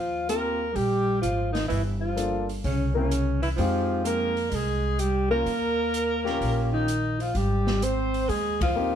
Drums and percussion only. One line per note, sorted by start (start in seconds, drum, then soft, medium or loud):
0.29 closed hi-hat soft
0.76 kick soft
0.76 open hi-hat soft
1.23 closed hi-hat soft
1.55 snare soft
1.55 open hi-hat soft
1.70 kick soft
1.70 open hi-hat soft
2.17 closed hi-hat soft
2.49 open hi-hat soft
2.64 kick soft
2.64 open hi-hat soft
3.11 closed hi-hat soft
3.43 open hi-hat soft
3.58 kick soft
3.58 open hi-hat soft
4.05 closed hi-hat soft
4.37 open hi-hat soft
4.52 kick soft
4.52 open hi-hat soft
4.99 closed hi-hat soft
5.46 kick soft
5.46 open hi-hat soft
5.94 closed hi-hat soft
6.26 snare soft
6.41 kick soft
6.41 open hi-hat soft
6.88 closed hi-hat soft
7.20 open hi-hat soft
7.35 kick soft
7.35 open hi-hat soft
7.67 snare medium
7.82 closed hi-hat soft
8.14 open hi-hat soft
8.29 kick soft
8.29 open hi-hat soft
8.61 kick medium
8.61 ride medium